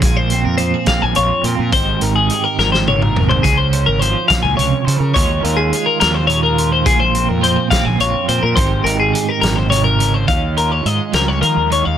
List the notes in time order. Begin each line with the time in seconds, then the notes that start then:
Already playing: G#3 F4
0.01 A#1 G#4, kick, closed hi-hat
0.05 A#2
0.17 C5
0.30 C4, closed hi-hat
0.45 F2 A#4
0.58 F3 F4 C5, closed hi-hat
0.74 G#4
0.86 C4 F5, kick, snare, closed hi-hat
1.02 A#1 G#5
1.15 A#1 F2 F4 C#5, closed hi-hat
1.43 A#2 C4 C5, closed hi-hat
1.59 A#2 A#4
1.72 G#1 G#2 D#3 C4 D#4 G4 C5, kick, closed hi-hat
2.01 G#1 D#4 A#4, closed hi-hat
2.16 G#4
2.30 D#3 G4, closed hi-hat
2.44 A#4
2.58 G#1 G#2 A#4, snare
2.72 C5, snare
2.88 A#2 C#5, high tom
3.02 A#4, mid tom
3.16 C3, mid tom
3.29 C5, floor tom
3.43 C#2 C#3 G#4, kick, closed hi-hat
3.58 C5
3.73 C#4, closed hi-hat
3.86 G#1 A#4
3.99 F3 F4 C5, closed hi-hat
4.28 A#2 F5, kick, snare, closed hi-hat
4.43 C#2 G#5
4.57 C#2 C3 C#5, closed hi-hat
4.85 C#3 C5, closed hi-hat
4.99 C#3 A#4
5.14 D#2 D#3 G#3 C#4 F4 C#5, kick, closed hi-hat
5.43 D#2 F4 A#4, closed hi-hat
5.57 G#4
5.73 G#3 F4, closed hi-hat
5.86 A#4
6.00 D#2 F4 A#4, snare, closed hi-hat
6.14 C5
6.27 A#2 F4 C#5, closed hi-hat
6.43 A#4
6.58 F4, closed hi-hat
6.72 C5
6.86 A#1 A#2 G#4, kick, closed hi-hat
7.00 C5
7.15 C4, closed hi-hat
7.29 F2 A#4
7.41 F3 F4 C5, closed hi-hat
7.56 G#4
7.71 C4 F5, kick, snare, closed hi-hat
7.85 A#1 G#5
7.99 A#1 F2 F4 C#5, closed hi-hat
8.28 A#2 C4 C5, closed hi-hat
8.43 A#2 A#4
8.56 G#1 G#2 D#3 C4 D#4 G4 C5, kick, closed hi-hat
8.84 G#1 D#4 A#4, closed hi-hat
9.00 G#4
9.13 D#3 G4, closed hi-hat
9.29 A#4
9.41 G#1 A#2 A#4, snare, closed hi-hat
9.56 C5
9.70 C3 C#5, closed hi-hat
9.84 A#4
9.99 C#3, closed hi-hat
10.14 C5
10.27 D#2 D#3 C#4 F5, kick, closed hi-hat
10.57 F4 A#4, closed hi-hat
10.72 C#5
10.85 G#2 G#3 D#5, closed hi-hat
11.12 C#2 G3 A#4, snare, closed hi-hat
11.28 C#5
11.41 D#3 F3 A#4, closed hi-hat
11.56 D#2
11.70 D#3 C#5, closed hi-hat
11.85 D#2 F5